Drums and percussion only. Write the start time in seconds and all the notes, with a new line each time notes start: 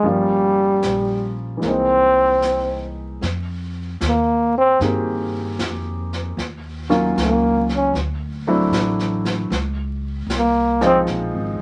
0.04 brush sweep
0.82 snare, hi-hat pedal
1.62 brush sweep, snare
2.42 snare, hi-hat pedal
3.22 brush sweep, snare
4.01 snare, hi-hat pedal
4.80 brush sweep, snare
5.59 snare, hi-hat pedal
6.13 snare
6.38 brush sweep, snare
6.91 snare
7.17 snare, hi-hat pedal
7.69 snare
7.95 brush sweep, snare
8.73 snare, hi-hat pedal
8.99 snare
9.25 snare
9.52 brush sweep, snare
10.30 snare, hi-hat pedal
10.81 snare
11.07 brush sweep, snare